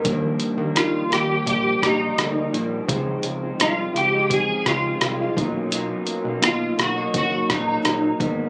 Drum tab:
HH |xxxxxxxx|xxxxxxxx|xxxxxxxx|
SD |--rr-rr-|--r--rr-|--rr-rr-|
BD |o---oo--|o---oo-o|----oo-o|